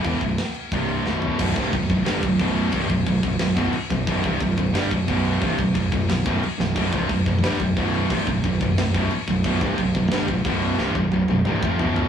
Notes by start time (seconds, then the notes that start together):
0.04 E1 E2 B2 E3, kick, crash
0.21 B0 B1 F#2, kick, crash
0.38 snare, crash
0.54 crash
0.71 C1 C2 G2 C3, kick, crash
0.88 crash
1.05 B0 B1 F#2 B2, snare
1.22 floor tom
1.39 B0 B1 F#2 B2, kick, crash
1.56 C1 C2 G2 C3, kick, crash
1.73 B0 B1 F#2, kick, crash
1.89 B0 B1 F#2, kick, crash
2.06 G1 G2 D3 G3, snare, crash
2.22 B0 B1 F#2, kick, crash
2.39 B0 B1 F#2 B2, kick, crash
2.56 crash
2.72 C1 C2 G2 C3, kick, crash
2.89 B0 B1 F#2, kick, crash
3.06 B0 B1 F#2, kick, crash
3.23 B0 B1 F#2, kick, crash
3.39 B0 B1 F#2, snare, crash
3.56 B0 B1 F#2 B2, kick, crash
3.72 muted fingered electric bass stroke, muted distorted electric guitar stroke, crash
3.90 B0 B1 F#2, kick, crash
4.07 B0 B1 F#2 B2, kick, crash
4.24 C1 C2 G2 C3, kick, crash
4.40 B0 B1 F#2, kick, crash
4.58 B0 B1 F#2, kick, crash
4.73 G1 G2 D3 G3, snare, crash
4.91 B0 B1 F#2, kick, crash
5.08 B0 B1 F#2 B2, kick, crash
5.25 crash
5.41 C1 C2 G2 C3, kick, crash
5.58 B0 B1 F#2, kick, crash
5.74 B0 B1 F#2, kick, crash
5.92 B0 B1 F#2, kick, crash
6.08 B0 B1 F#2, snare, crash
6.25 B0 B1 F#2 B2, kick, crash
6.42 muted fingered electric bass stroke, muted distorted electric guitar stroke, crash
6.59 B0 B1 F#2, snare
6.76 B0 B1 F#2 B2, kick, crash
6.93 C1 C2 G2 C3, kick, crash
7.09 B0 B1 F#2, kick, crash
7.26 B0 B1 F#2, kick, crash
7.41 G1 G2 D3 G3, snare, crash
7.59 B0 B1 F#2, kick, crash
7.76 B0 B1 F#2 B2, kick, crash
7.94 crash
8.10 C1 C2 G2 C3, kick, crash
8.27 B0 B1 F#2, kick, crash
8.44 B0 B1 F#2, kick, crash
8.61 B0 B1 F#2, kick, crash
8.77 B0 B1 F#2, snare, crash
8.94 B0 B1 F#2 B2, kick, crash
9.11 muted fingered electric bass stroke, muted distorted electric guitar stroke, crash
9.28 B0 B1 F#2, kick, crash
9.44 B0 B1 F#2 B2, kick, crash
9.61 C1 C2 G2 C3, kick, crash
9.78 B0 B1 F#2, kick, crash
9.95 B0 B1 F#2, kick, crash
10.11 G1 G2 D3 G3, snare, crash
10.28 B0 B1 F#2, kick, crash
10.44 B0 B1 F#2 B2, kick, crash
10.62 crash
10.78 C1 C2 G2 C3, snare
10.95 B0 B1 F#2, kick
11.11 B0 B1 F#2, high tom
11.28 B0 B1 F#2, high tom
11.44 C1 C2 G2 C3, mid tom
11.62 F1 F2 C3 F3, kick
11.79 B0 B1 F#2 B2, floor tom
11.96 floor tom